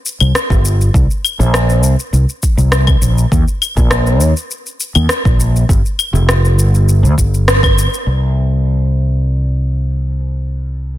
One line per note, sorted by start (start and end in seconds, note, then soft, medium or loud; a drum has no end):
0.06 shaker medium
0.20 0.31 C2 medium
0.20 claves medium
0.20 shaker soft
0.35 cross-stick loud
0.35 shaker soft
0.50 0.88 G1 loud
0.50 kick loud
0.50 shaker soft
0.65 shaker medium
0.81 shaker soft
0.94 1.06 C2 loud
0.94 kick loud
0.94 shaker soft
1.11 shaker soft
1.25 claves medium
1.25 shaker medium
1.39 1.83 A#1 loud
1.39 shaker soft
1.54 cross-stick loud
1.54 shaker soft
1.70 shaker soft
1.83 1.94 C2 medium
1.83 shaker medium
1.99 shaker soft
2.13 2.24 C2 medium
2.13 shaker soft
2.29 shaker soft
2.43 kick medium
2.43 shaker medium
2.57 2.96 C2 medium
2.57 shaker soft
2.72 cross-stick loud
2.72 shaker soft
2.87 kick loud
2.87 cross-stick soft
2.87 claves medium
2.87 shaker soft
3.01 3.24 A#1 medium
3.01 shaker medium
3.18 shaker soft
3.32 3.43 D#2 loud
3.32 kick loud
3.32 shaker soft
3.48 shaker soft
3.62 claves medium
3.62 shaker medium
3.77 4.21 A#1 loud
3.77 kick loud
3.77 shaker soft
3.91 cross-stick loud
3.91 shaker soft
4.07 shaker soft
4.21 4.32 D#2 medium
4.21 shaker medium
4.37 shaker soft
4.51 shaker soft
4.66 shaker soft
4.80 shaker medium
4.95 5.06 D#2 medium
4.95 claves medium
4.95 shaker soft
5.09 cross-stick loud
5.09 shaker soft
5.25 5.63 A#1 loud
5.25 kick loud
5.25 shaker soft
5.40 shaker medium
5.56 shaker soft
5.69 5.81 G1 loud
5.69 kick loud
5.69 shaker soft
5.86 shaker soft
5.99 claves medium
5.99 shaker medium
6.13 6.57 F1 loud
6.13 shaker soft
6.29 cross-stick loud
6.29 shaker soft
6.45 shaker soft
6.57 7.05 G1 medium
6.57 shaker medium
6.75 shaker soft
6.89 shaker soft
7.03 7.14 D2 medium
7.03 shaker soft
7.18 7.86 G1 medium
7.18 kick medium
7.18 shaker medium
7.34 shaker soft
7.48 cross-stick loud
7.48 shaker soft
7.63 kick loud
7.63 cross-stick soft
7.63 claves medium
7.63 shaker soft
7.78 shaker medium
7.94 shaker soft
8.06 10.98 C2 medium